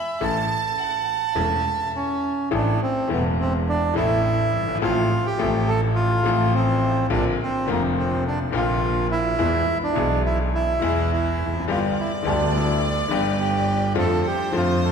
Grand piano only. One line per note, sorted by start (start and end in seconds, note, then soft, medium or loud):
0.20 0.46 A1 medium
0.20 0.46 A2 medium
0.20 0.45 E3 medium
0.20 0.46 A3 medium
0.20 0.46 C#4 medium
0.20 0.46 A4 medium
1.35 1.61 E1 medium
1.35 1.61 E2 medium
1.35 1.60 E3 medium
1.35 1.61 A3 medium
1.35 1.61 C#4 medium
1.35 1.61 A4 medium
2.51 2.76 A1 medium
2.51 2.76 A2 medium
2.51 2.76 E3 medium
2.51 2.76 A3 medium
2.51 2.76 C4 medium
2.51 2.76 A4 medium
3.07 3.92 E1 medium
3.07 3.92 E2 medium
3.07 3.91 E3 medium
3.07 3.91 A3 medium
3.07 3.92 C4 medium
3.07 3.93 A4 medium
3.94 4.77 A1 medium
3.94 4.77 A2 medium
3.94 4.76 E3 medium
3.94 4.77 A3 medium
3.94 4.78 C4 medium
3.98 4.78 A4 medium
4.61 4.68 F#1 medium
4.68 4.75 G1 medium
4.75 4.82 G#1 medium
4.82 5.06 A1 medium
4.82 5.06 A2 loud
4.82 5.06 F3 medium
4.82 5.06 A3 medium
4.82 5.06 C4 medium
4.82 5.06 A4 medium
5.37 6.20 A1 medium
5.37 6.20 A2 medium
5.37 6.19 F3 medium
5.37 6.20 A3 medium
5.37 6.21 C4 medium
5.37 6.21 A4 medium
6.23 7.06 A1 loud
6.23 7.06 A2 loud
6.23 7.05 F3 medium
6.23 7.06 A3 medium
6.23 7.06 C4 medium
6.23 7.07 A4 medium
7.10 7.34 A#1 loud
7.10 7.34 A#2 medium
7.10 7.34 D3 medium
7.10 7.34 A#3 medium
7.10 7.34 C4 medium
7.10 7.34 F4 medium
7.66 8.49 F1 loud
7.66 8.49 F2 loud
7.66 8.48 D3 medium
7.66 8.48 A#3 medium
7.66 8.49 C4 medium
7.66 8.50 F4 loud
8.51 9.34 A#1 medium
8.51 9.34 A#2 loud
8.51 9.33 D3 medium
8.51 9.34 A#3 medium
8.51 9.34 C4 medium
8.55 9.35 F4 medium
9.39 9.63 E2 medium
9.39 9.63 E3 loud
9.39 9.63 G#3 medium
9.39 9.63 B3 medium
9.39 9.63 G#4 medium
9.93 10.77 B1 medium
9.93 10.77 B2 medium
9.93 10.76 E3 medium
9.93 10.77 G#3 medium
9.93 10.78 B3 medium
9.98 10.78 G#4 medium
10.80 11.44 E2 loud
10.80 10.81 E3 medium
10.80 11.63 E3 medium
10.80 11.63 G#3 medium
10.80 11.64 B3 medium
10.84 11.65 G#4 medium
11.46 11.53 E2 medium
11.53 11.60 F2 medium
11.60 11.67 F#2 medium
11.68 11.92 G1 medium
11.68 11.92 G2 medium
11.68 11.92 D3 medium
11.68 11.92 G3 medium
11.68 11.92 B3 medium
11.68 11.92 G4 medium
12.23 13.06 D2 medium
12.23 12.24 D3 medium
12.23 13.06 D3 medium
12.23 13.06 G3 medium
12.23 13.07 B3 medium
12.23 13.07 G4 medium
13.08 13.92 G1 loud
13.08 13.92 G2 medium
13.08 13.91 D3 medium
13.08 13.91 G3 medium
13.08 13.92 B3 medium
13.13 13.93 G4 medium
13.95 14.20 F2 loud
13.95 14.19 D3 medium
13.95 14.20 F3 loud
13.95 14.20 A3 medium
13.95 14.20 F4 medium
14.51 14.92 F2 loud
14.51 14.92 D3 medium
14.51 14.92 F3 medium
14.51 14.92 A3 medium
14.55 14.92 F4 medium